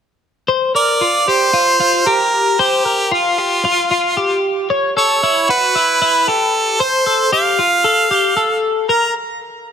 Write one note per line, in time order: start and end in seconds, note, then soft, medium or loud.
0.48 0.74 C5 medium
0.75 1.01 A#4 medium
0.75 1.30 D5 medium
1.01 1.28 F4 medium
1.28 1.53 G4 medium
1.28 2.10 C5 loud
1.53 1.79 F4 medium
1.80 2.06 F4 medium
2.07 2.56 G4 medium
2.07 2.62 A#4 medium
2.59 3.13 G4 medium
2.59 2.85 C5 medium
2.85 3.12 A#4 medium
3.12 3.38 F4 medium
3.12 4.41 F4 medium
3.38 3.64 G4 medium
3.65 3.90 F4 medium
3.91 4.17 F4 medium
4.17 4.67 G4 medium
4.70 4.96 C#5 medium
4.97 5.23 A4 medium
4.97 5.46 C#5 medium
5.23 5.49 E4 medium
5.49 5.75 F#4 medium
5.49 6.30 B4 medium
5.75 6.00 E4 medium
6.02 6.28 E4 medium
6.28 6.77 G4 medium
6.28 6.82 A4 medium
6.80 7.06 C5 medium
6.80 7.32 C5 medium
7.07 7.32 A4 medium
7.33 7.59 G4 medium
7.33 8.59 F5 medium
7.59 7.85 F4 medium
7.84 8.11 A4 medium
8.11 8.36 G4 medium
8.37 8.86 A4 medium
8.89 9.13 A#4 medium
8.89 9.13 A#5 medium